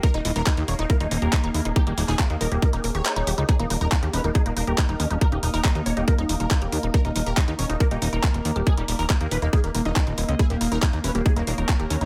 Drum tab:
HH |xxoxxxoxxxoxxxox|xxooxxoxxxoxxxox|xxoxxxoxxxoxxxox|xxooxxoxxxoxxxox|
CP |----x-------x---|---xx-------x---|----x-------x---|----x-------x---|
BD |o---o---o---o---|o---o---o-------|o---o---o---o---|o---o---o---o---|

HH |xxoxxxoxxxoxxxox|xxooxxoxxxoxxxox|xxoxxxoxxxoxxxox|
CP |----x-------x---|----x-------x---|----x-------x---|
BD |o---o---o---o---|o---o---o---o---|o---o---o---o---|